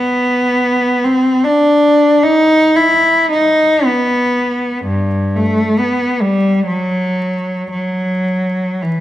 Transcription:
0.00 1.01 B3 medium
1.04 1.44 C4 medium
1.44 2.23 D4 medium
2.23 2.76 D#4 medium
2.76 3.30 E4 medium
3.31 3.84 D#4 medium
3.86 4.84 B3 medium
4.84 5.33 G2 medium
5.36 5.79 A3 medium
5.79 6.22 B3 medium
6.22 6.67 G3 medium
6.67 7.68 F#3 medium
7.71 8.79 F#3 medium
8.81 9.00 E3 medium

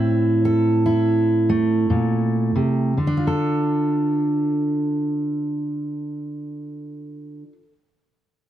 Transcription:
0.00 1.90 A2 medium
0.00 2.93 C4 medium
0.00 0.85 E4 medium
0.00 0.45 C5 medium
0.45 2.92 A4 medium
0.86 2.93 E4 medium
1.49 2.93 A3 medium
1.90 2.55 A#2 medium
2.56 2.97 C3 medium
2.97 7.42 D3 soft
3.07 7.52 D4 soft
3.17 7.62 F4 soft
3.27 7.72 A4 medium

